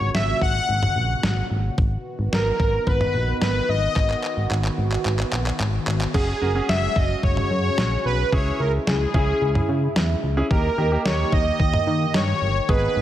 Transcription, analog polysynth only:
Already playing: C#5
0.14 E5
0.42 F#5
2.33 A#4
2.87 B4
3.42 B4
3.69 D#5
6.14 G#4
6.69 E5
6.96 D#5
7.23 C#5
8.05 B4
8.32 C#5
8.60 A#4
8.87 G#4
10.51 A#4
11.05 C#5
11.33 D#5
12.14 C#5
12.69 B4

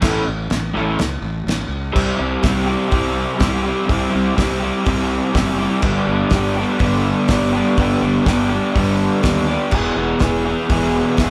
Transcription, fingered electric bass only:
0.03 A1
0.28 A1
0.51 A1
0.76 A1
1.01 C#2
1.22 A1
1.46 A1
1.69 C#2
1.95 C2
2.20 C2
2.43 C2
2.92 C2
3.40 C2
3.90 C2
4.15 C2
4.39 C2
4.87 C2
5.34 F#1
5.83 G1
6.07 G1
6.31 G1
6.81 G1
7.29 G1
7.78 G1
8.02 G1
8.26 G1
8.77 G1
9.24 D#2
9.73 E1
9.96 E1
10.22 E1
10.70 E1
11.19 E1

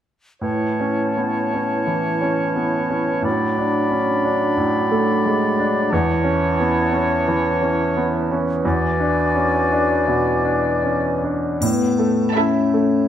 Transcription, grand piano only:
0.41 A2
0.80 C#4
1.17 B3
1.53 C#4
1.87 E3
2.22 C#4
2.56 B3
2.90 C#4
3.22 A2
3.58 D4
3.91 C#4
4.25 D4
4.57 A2
4.91 A3
5.26 G#3
5.60 D4
5.92 E2
6.24 C#4
6.60 B3
6.93 C#4
7.28 E3
7.62 C#4
7.97 B3
8.31 C#4
8.65 E2
9.00 D4
9.35 C#4
9.72 D4
10.08 B2
10.45 D4
10.84 C#4
11.24 D4
11.63 A2
11.99 A3
12.35 E4
12.74 A3

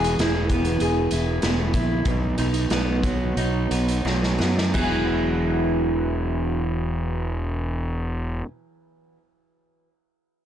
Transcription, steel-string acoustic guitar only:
Already playing: E3 G#4
0.20 E4
0.51 B3
0.81 G#4
1.12 E4
1.43 B3
1.75 E4
2.07 B2
2.38 D#4
2.71 B3
3.04 F#3
3.37 D#4
3.71 B3
4.05 F#3
4.38 B3
4.74 E3 F#3 B3 E4 G#4

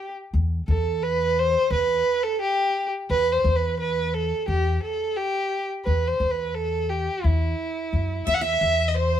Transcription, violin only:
Already playing: G4
0.68 A4
1.03 B4
1.39 C5
1.72 B4
2.23 A4
2.41 G4
3.10 B4
3.32 C5
3.56 B4
3.79 B4
4.14 A4
4.48 G4
4.82 A4
5.17 G4
5.85 B4
6.08 C5
6.30 B4
6.54 A4
6.89 G4
7.24 E4
8.28 E5
8.34 F#5
8.41 E5
8.88 D#5
8.96 C5

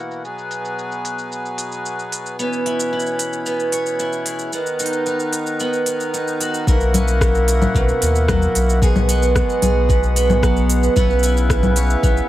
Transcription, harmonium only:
Already playing: B2 E3 A#3 F#4
0.24 F#3 B3 G#4
2.40 E3 C#4 B4
4.54 D#3 B3 A#4
6.67 A#3 E4 F#4
8.82 B2 G#3 F#4
10.97 C#3 B3 E4

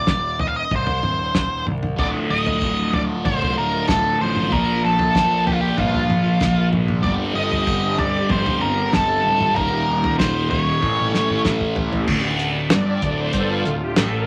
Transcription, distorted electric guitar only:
1.97 D2 A2 D3
4.51 A#2 F3 A#3
7.03 G2 D3 G3
9.56 D#2 A#2 D#3
10.81 A2 E3 A3
12.07 D2
12.70 G2
13.02 D2
13.33 G2
13.65 D2
13.96 A2

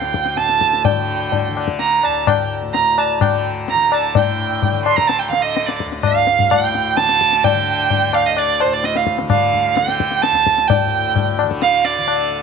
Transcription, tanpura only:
Already playing: D2 A2 D3
0.35 A2
0.91 D3
1.49 D3
2.05 D2
2.62 A2
3.19 D3
3.75 D3
4.16 A2
4.71 D3
5.29 D3
5.84 D2
6.41 A2
6.97 D3
7.53 D3
8.08 D2
8.65 A2
9.21 D3
9.75 D3
10.31 D2
10.86 A2
11.43 D3
11.98 D3

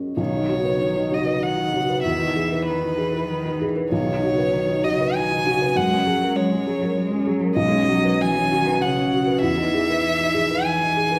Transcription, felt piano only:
Already playing: F#2 C#4 G#4 A#4 C#5 D#5
0.17 B1
0.34 D#4
0.49 F#4
0.64 B4
0.96 D#4
1.11 F#4
1.25 B4
1.57 D#4
1.73 F#4
1.89 B4
2.05 E2
2.20 D#4
2.36 G#4
2.52 B4
2.82 D#4
2.98 G#4
3.13 B4
3.45 D#4
3.61 G#4
3.76 B4
3.92 B1
4.07 D#4
4.23 F#4
4.38 B4
4.69 D#4
4.84 F#4
5.01 B4
5.31 D#4
5.46 F#4
5.61 B4
5.76 F#2
5.90 C#4
6.06 G#4
6.21 A#4
6.51 C#4
6.67 G#4
6.82 A#4
7.11 C#4
7.25 G#4
7.41 A#4
7.56 B1
7.71 C#4
7.88 F#4
8.04 B4
8.36 C#4
8.51 F#4
8.66 B4
8.97 C#4
9.13 F#4
9.27 B4
9.42 E2
9.58 D#4
9.74 G#4
9.89 B4
10.20 D#4
10.34 G#4
10.50 B4
10.81 D#4
10.97 G#4
11.11 B4

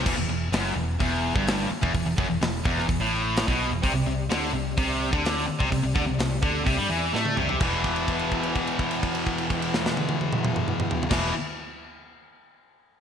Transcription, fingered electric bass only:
0.06 E1
0.17 E1
0.28 E1
0.52 F#1
0.76 E1
1.01 E1
1.36 G1
1.83 E1
1.94 E1
2.06 E1
2.18 F#1
2.30 E1
2.41 E1
2.66 E1
2.89 E1
3.00 A1
3.48 B1
3.71 E1
3.83 C2
3.94 C2
4.06 C2
4.30 D2
4.53 C2
4.78 C2
5.13 D2
5.48 muted fingered electric bass stroke
5.61 C2
5.72 C2
5.84 C2
5.95 D2
6.07 C2
6.18 C2
6.43 D2
6.67 C2
6.78 G2
6.89 E2
7.13 A2
7.37 C2
7.61 E1
11.11 E1

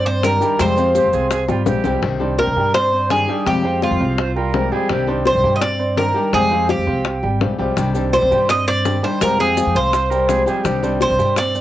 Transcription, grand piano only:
0.06 C4 C5 D5
0.41 G3 G4 G5
0.59 G3 G4 G5
0.77 C4 C5 F5
1.13 C4 C5 F5
1.49 G3 G4 G5
1.85 G3 G4 G5
2.21 C4 C5 D5
2.57 G3 G4 G5
2.75 C4 C5 D5
2.93 C4 C5 D5
3.29 G3 G4 G5
3.47 G3 G4 G5
3.64 C4 C5 F5
4.00 C4 C5 F5
4.36 G3 G4 G5
4.72 G3 G4 G5
5.08 C4 C5 D5
5.43 G3 G4 G5
5.62 C4 C5 D5
5.79 C4 C5 D5
6.16 G3 G4 G5
6.33 G3 G4 G5
6.51 C4 C5 F5
6.87 C4 C5 F5
7.23 G3 G4 G5
7.59 G3 G4 G5
7.95 C4 C5 D5
8.31 G3 G4 G5
8.49 C4 C5 D5
8.67 C4 C5 D5
9.03 G3 G4 G5
9.21 G3 G4 G5
9.39 C4 C5 F5
9.75 C4 C5 F5
10.11 G3 G4 G5
10.47 G3 G4 G5
10.83 C4 C5 D5
11.19 G3 G4 G5
11.37 C4 C5 D5
11.55 C4 C5 D5

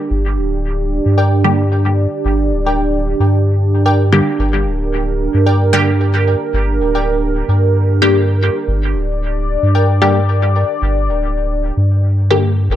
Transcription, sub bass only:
0.11 G1
0.37 D1
1.06 G2
2.25 G1
2.52 D1
3.20 G2
4.39 G1
4.66 D1
5.34 G2
6.53 G1
6.80 D1
7.48 G2
8.68 G1
8.95 D1
9.63 G2
10.82 G1
11.09 D1
11.77 G2
12.70 G1

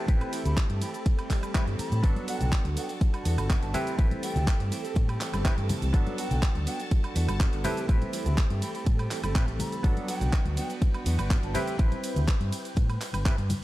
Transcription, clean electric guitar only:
Already playing: E3 A3 C4 G4
0.32 E3 A3 C4 G4
0.45 A3 C4 G4
0.58 C4 G4
0.69 A3 C4 G4
0.81 E3 A3 C4 G4
0.94 A3 C4 G4
1.18 A3 C4 G4
1.30 E3 A3 C4 G4
1.43 A3 C4 G4
1.54 E3 A3 C4 G4
2.03 B3 D4 F#4
2.27 B3 D4 F#4
2.40 D4 F#4
2.52 B3 D4 F#4
2.65 D4 F#4
2.76 B3 D4 F#4
2.89 D4 F#4
3.13 D4 F#4
3.25 B3 D4 F#4
3.38 D4 F#4
3.50 B3 F#4
3.74 E3 A3 C4 G4
4.23 E3 A3 C4 G4
4.35 A3 C4 G4
4.47 E3 A3 G4
4.59 A3 C4 G4
4.71 E3 A3 C4 G4
4.84 A3 C4 G4
5.08 A3 C4 G4
5.20 E3 A3 C4 G4
5.33 A3 C4 G4
5.45 E3 A3 G4
5.93 B3 D4 F#4
6.17 B3 D4 F#4
6.30 D4 F#4
6.42 B3 F#4
6.55 D4 F#4
6.66 B3 D4 F#4
6.79 D4 F#4
7.03 D4 F#4
7.15 B3 D4 F#4
7.28 D4 F#4
7.40 B3 D4 F#4
7.64 E3 A3 C4 G4
8.13 E3 A3 C4 G4
8.25 A3 C4 G4
8.37 E3 A3 C4 G4
8.50 A3 C4 G4
8.62 E3 A3 C4 G4
8.74 A3 C4 G4
8.99 A3 C4 G4
9.10 E3 A3 C4 G4
9.23 A3 C4 G4
9.35 E3
9.84 F#3 B3 D4 F#4
10.08 F#3 B3 D4 F#4
10.20 B3 D4 F#4
10.32 F#3 B3 D4 F#4
10.45 B3 D4 F#4
10.57 F#3 B3 D4 F#4
10.69 B3 D4 F#4
10.94 B3 D4 F#4
11.05 F#3 B3 D4 F#4
11.18 B3 D4 F#4
11.30 F#3 B3 F#4
11.54 E3 A3 C4 G4

